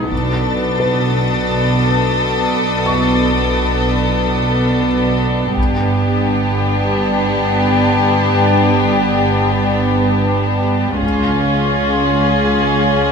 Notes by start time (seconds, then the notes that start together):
Already playing: D#4 D#6
0.10 B1 B2 B3 D4 A4 D6 A6, taiko
0.80 B4 D#6
2.86 C#6
5.56 G1 G2 B3 D4 G4, taiko
11.02 C#2 C#4 F4 G#4 G#6 A6, taiko